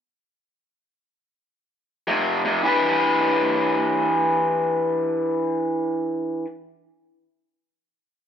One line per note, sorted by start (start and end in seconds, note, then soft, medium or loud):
2.07 2.42 F2 medium
2.07 2.42 C3 medium
2.45 2.63 F2 medium
2.45 2.63 C3 medium
2.63 6.44 E3 medium
2.63 6.45 D4 medium
2.63 6.46 G4 medium
2.68 6.46 B4 loud